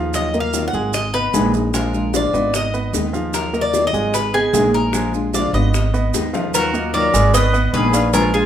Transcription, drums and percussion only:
0.14 high bongo, maracas
0.34 high bongo, maracas
0.54 high bongo, maracas
0.73 high bongo, maracas
0.94 high bongo, maracas
1.14 maracas
1.34 high bongo, low bongo, maracas
1.54 high bongo, maracas
1.74 high bongo, maracas
1.94 high bongo, maracas
2.14 high bongo, maracas
2.34 high bongo, maracas
2.54 high bongo, maracas
2.74 maracas
2.94 high bongo, low bongo, maracas
3.14 high bongo, maracas
3.34 high bongo, maracas
3.54 high bongo, maracas
3.74 high bongo, maracas
3.94 high bongo, maracas
4.14 high bongo, maracas
4.34 maracas
4.54 high bongo, low bongo, maracas
4.74 high bongo, maracas
4.93 high bongo, maracas
5.14 high bongo, maracas
5.34 high bongo, maracas
5.54 high bongo, maracas
5.74 high bongo, maracas
5.94 maracas
6.14 high bongo, maracas
6.34 low bongo, maracas
6.54 cowbell, maracas
6.74 maracas
6.94 cowbell, maracas
7.14 cowbell, maracas
7.34 cowbell, maracas
7.54 maracas
7.74 cowbell, maracas
7.94 cowbell, maracas
8.14 cowbell, maracas
8.34 maracas

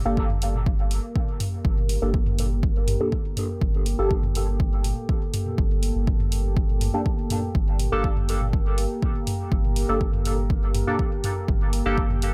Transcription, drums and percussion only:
0.17 kick
0.30 mid tom
0.42 open hi-hat
0.54 high tom
0.66 kick
0.91 open hi-hat
1.16 kick, high tom
1.40 mid tom, open hi-hat
1.65 kick
1.77 high tom
1.89 open hi-hat
2.14 kick
2.26 mid tom
2.38 open hi-hat, high tom
2.63 kick
2.88 mid tom, open hi-hat
3.00 high tom
3.12 kick
3.37 mid tom, open hi-hat
3.61 kick, high tom
3.86 open hi-hat
4.11 kick
4.23 mid tom, high tom
4.35 open hi-hat
4.60 kick
4.84 open hi-hat, high tom
5.09 kick
5.34 mid tom, open hi-hat
5.46 high tom
5.58 kick
5.83 open hi-hat
6.07 kick, high tom
6.20 mid tom
6.32 open hi-hat
6.57 kick
6.69 high tom
6.81 mid tom, open hi-hat
7.06 kick
7.30 mid tom, open hi-hat, high tom
7.55 kick
7.80 open hi-hat, high tom
8.04 kick
8.17 mid tom
8.29 open hi-hat
8.41 high tom
8.53 kick
8.78 open hi-hat
9.02 kick, high tom
9.27 mid tom, open hi-hat
9.52 kick
9.64 high tom
9.76 open hi-hat
10.01 kick
10.13 mid tom
10.25 open hi-hat, high tom
10.50 kick
10.75 mid tom, open hi-hat
10.87 high tom
10.99 kick
11.24 mid tom, open hi-hat
11.48 kick
11.73 open hi-hat
11.98 kick
12.10 mid tom, high tom
12.22 open hi-hat

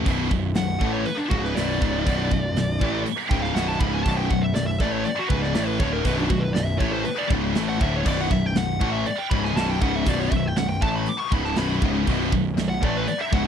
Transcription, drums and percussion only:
0.06 kick, open hi-hat
0.31 kick
0.55 snare, open hi-hat
0.81 kick
1.06 open hi-hat
1.31 kick
1.45 snare
1.57 snare, open hi-hat
1.82 kick
2.07 kick, open hi-hat
2.31 kick
2.56 snare, open hi-hat
2.81 kick
3.06 open hi-hat
3.31 kick
3.44 snare
3.56 snare, open hi-hat
3.81 kick
4.06 kick, open hi-hat
4.31 kick
4.55 snare, open hi-hat
4.80 kick
5.05 open hi-hat
5.30 kick
5.44 snare
5.55 snare, open hi-hat
5.80 kick
6.05 kick, open hi-hat
6.30 kick
6.55 snare, open hi-hat
6.80 kick
7.05 open hi-hat
7.30 kick
7.55 snare, open hi-hat
7.81 kick
8.06 kick, crash
8.31 kick
8.55 snare, open hi-hat
8.81 kick
9.06 open hi-hat
9.31 kick
9.45 snare
9.57 snare, open hi-hat
9.82 kick
10.06 kick, open hi-hat
10.32 kick
10.56 snare, open hi-hat
10.82 kick
11.06 open hi-hat
11.32 kick
11.45 snare
11.56 snare, open hi-hat
11.82 kick
12.07 kick, open hi-hat
12.32 kick
12.57 snare, open hi-hat
12.83 kick
13.08 open hi-hat
13.33 kick

